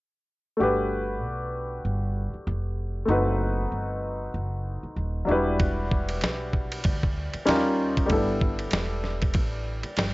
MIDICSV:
0, 0, Header, 1, 5, 480
1, 0, Start_track
1, 0, Key_signature, 1, "major"
1, 0, Tempo, 625000
1, 461, Time_signature, 4, 2, 24, 8
1, 7786, End_track
2, 0, Start_track
2, 0, Title_t, "Grand piano"
2, 0, Program_c, 0, 0
2, 436, Note_on_c, 0, 57, 58
2, 450, Note_on_c, 0, 62, 46
2, 459, Note_on_c, 0, 66, 47
2, 469, Note_on_c, 0, 67, 57
2, 484, Note_on_c, 0, 71, 60
2, 2335, Note_off_c, 0, 57, 0
2, 2345, Note_off_c, 0, 62, 0
2, 2346, Note_on_c, 0, 57, 56
2, 2349, Note_off_c, 0, 66, 0
2, 2354, Note_off_c, 0, 67, 0
2, 2361, Note_on_c, 0, 60, 46
2, 2362, Note_off_c, 0, 71, 0
2, 2373, Note_on_c, 0, 63, 56
2, 2381, Note_on_c, 0, 66, 50
2, 2393, Note_on_c, 0, 71, 64
2, 4013, Note_off_c, 0, 57, 0
2, 4020, Note_off_c, 0, 60, 0
2, 4026, Note_off_c, 0, 63, 0
2, 4030, Note_off_c, 0, 66, 0
2, 4031, Note_on_c, 0, 54, 50
2, 4037, Note_off_c, 0, 71, 0
2, 4047, Note_on_c, 0, 62, 62
2, 4056, Note_on_c, 0, 64, 55
2, 4071, Note_on_c, 0, 66, 54
2, 4079, Note_on_c, 0, 71, 75
2, 4081, Note_on_c, 0, 55, 65
2, 4104, Note_off_c, 0, 54, 0
2, 5703, Note_off_c, 0, 62, 0
2, 5708, Note_off_c, 0, 64, 0
2, 5715, Note_off_c, 0, 55, 0
2, 5715, Note_off_c, 0, 66, 0
2, 5719, Note_off_c, 0, 71, 0
2, 5727, Note_on_c, 0, 55, 66
2, 5728, Note_on_c, 0, 61, 64
2, 5738, Note_on_c, 0, 63, 63
2, 5743, Note_on_c, 0, 65, 59
2, 5750, Note_on_c, 0, 70, 63
2, 6179, Note_off_c, 0, 55, 0
2, 6191, Note_on_c, 0, 55, 58
2, 6200, Note_on_c, 0, 57, 46
2, 6214, Note_off_c, 0, 61, 0
2, 6216, Note_on_c, 0, 62, 49
2, 6220, Note_off_c, 0, 63, 0
2, 6222, Note_off_c, 0, 65, 0
2, 6224, Note_on_c, 0, 64, 46
2, 6226, Note_off_c, 0, 70, 0
2, 6240, Note_on_c, 0, 69, 66
2, 6251, Note_on_c, 0, 59, 51
2, 6268, Note_off_c, 0, 57, 0
2, 7786, Note_off_c, 0, 55, 0
2, 7786, Note_off_c, 0, 59, 0
2, 7786, Note_off_c, 0, 62, 0
2, 7786, Note_off_c, 0, 64, 0
2, 7786, Note_off_c, 0, 69, 0
2, 7786, End_track
3, 0, Start_track
3, 0, Title_t, "Upright bass"
3, 0, Program_c, 1, 32
3, 462, Note_on_c, 1, 31, 78
3, 949, Note_off_c, 1, 31, 0
3, 949, Note_on_c, 1, 35, 67
3, 1401, Note_off_c, 1, 35, 0
3, 1419, Note_on_c, 1, 31, 75
3, 1780, Note_off_c, 1, 31, 0
3, 1894, Note_on_c, 1, 29, 86
3, 2353, Note_off_c, 1, 29, 0
3, 2369, Note_on_c, 1, 30, 93
3, 2831, Note_off_c, 1, 30, 0
3, 2856, Note_on_c, 1, 31, 70
3, 3314, Note_off_c, 1, 31, 0
3, 3333, Note_on_c, 1, 30, 73
3, 3696, Note_off_c, 1, 30, 0
3, 3811, Note_on_c, 1, 27, 72
3, 4044, Note_off_c, 1, 27, 0
3, 4057, Note_on_c, 1, 28, 83
3, 4748, Note_off_c, 1, 28, 0
3, 4777, Note_on_c, 1, 35, 63
3, 5235, Note_off_c, 1, 35, 0
3, 5262, Note_on_c, 1, 38, 88
3, 5621, Note_off_c, 1, 38, 0
3, 5738, Note_on_c, 1, 39, 82
3, 6196, Note_off_c, 1, 39, 0
3, 6219, Note_on_c, 1, 31, 96
3, 6676, Note_off_c, 1, 31, 0
3, 6699, Note_on_c, 1, 28, 66
3, 7156, Note_off_c, 1, 28, 0
3, 7185, Note_on_c, 1, 33, 82
3, 7542, Note_off_c, 1, 33, 0
3, 7662, Note_on_c, 1, 31, 86
3, 7786, Note_off_c, 1, 31, 0
3, 7786, End_track
4, 0, Start_track
4, 0, Title_t, "Muted upright bass strokes"
4, 1792, Note_on_c, 9, 29, 38
4, 1869, Note_off_c, 9, 29, 0
4, 3710, Note_on_c, 9, 29, 44
4, 3787, Note_off_c, 9, 29, 0
4, 5639, Note_on_c, 9, 29, 45
4, 5716, Note_off_c, 9, 29, 0
4, 7560, Note_on_c, 9, 29, 46
4, 7636, Note_off_c, 9, 29, 0
4, 7786, End_track
5, 0, Start_track
5, 0, Title_t, "Drums"
5, 4296, Note_on_c, 9, 51, 52
5, 4299, Note_on_c, 9, 36, 97
5, 4373, Note_off_c, 9, 51, 0
5, 4376, Note_off_c, 9, 36, 0
5, 4542, Note_on_c, 9, 36, 76
5, 4618, Note_off_c, 9, 36, 0
5, 4673, Note_on_c, 9, 51, 48
5, 4750, Note_off_c, 9, 51, 0
5, 4769, Note_on_c, 9, 44, 38
5, 4769, Note_on_c, 9, 51, 49
5, 4789, Note_on_c, 9, 38, 80
5, 4846, Note_off_c, 9, 44, 0
5, 4846, Note_off_c, 9, 51, 0
5, 4866, Note_off_c, 9, 38, 0
5, 5018, Note_on_c, 9, 36, 62
5, 5094, Note_off_c, 9, 36, 0
5, 5160, Note_on_c, 9, 51, 56
5, 5236, Note_off_c, 9, 51, 0
5, 5252, Note_on_c, 9, 51, 66
5, 5261, Note_on_c, 9, 36, 85
5, 5329, Note_off_c, 9, 51, 0
5, 5338, Note_off_c, 9, 36, 0
5, 5402, Note_on_c, 9, 36, 78
5, 5479, Note_off_c, 9, 36, 0
5, 5635, Note_on_c, 9, 51, 46
5, 5711, Note_off_c, 9, 51, 0
5, 5736, Note_on_c, 9, 44, 46
5, 5736, Note_on_c, 9, 51, 68
5, 5751, Note_on_c, 9, 38, 85
5, 5813, Note_off_c, 9, 44, 0
5, 5813, Note_off_c, 9, 51, 0
5, 5828, Note_off_c, 9, 38, 0
5, 6122, Note_on_c, 9, 51, 52
5, 6123, Note_on_c, 9, 36, 75
5, 6199, Note_off_c, 9, 51, 0
5, 6200, Note_off_c, 9, 36, 0
5, 6217, Note_on_c, 9, 51, 57
5, 6221, Note_on_c, 9, 36, 94
5, 6294, Note_off_c, 9, 51, 0
5, 6298, Note_off_c, 9, 36, 0
5, 6463, Note_on_c, 9, 36, 84
5, 6540, Note_off_c, 9, 36, 0
5, 6597, Note_on_c, 9, 51, 50
5, 6674, Note_off_c, 9, 51, 0
5, 6689, Note_on_c, 9, 44, 43
5, 6689, Note_on_c, 9, 51, 57
5, 6708, Note_on_c, 9, 38, 89
5, 6765, Note_off_c, 9, 44, 0
5, 6765, Note_off_c, 9, 51, 0
5, 6785, Note_off_c, 9, 38, 0
5, 6943, Note_on_c, 9, 38, 28
5, 7019, Note_off_c, 9, 38, 0
5, 7080, Note_on_c, 9, 51, 52
5, 7086, Note_on_c, 9, 36, 88
5, 7156, Note_off_c, 9, 51, 0
5, 7163, Note_off_c, 9, 36, 0
5, 7173, Note_on_c, 9, 51, 61
5, 7181, Note_on_c, 9, 36, 85
5, 7249, Note_off_c, 9, 51, 0
5, 7258, Note_off_c, 9, 36, 0
5, 7554, Note_on_c, 9, 51, 48
5, 7630, Note_off_c, 9, 51, 0
5, 7655, Note_on_c, 9, 44, 53
5, 7655, Note_on_c, 9, 51, 73
5, 7670, Note_on_c, 9, 38, 99
5, 7732, Note_off_c, 9, 44, 0
5, 7732, Note_off_c, 9, 51, 0
5, 7747, Note_off_c, 9, 38, 0
5, 7786, End_track
0, 0, End_of_file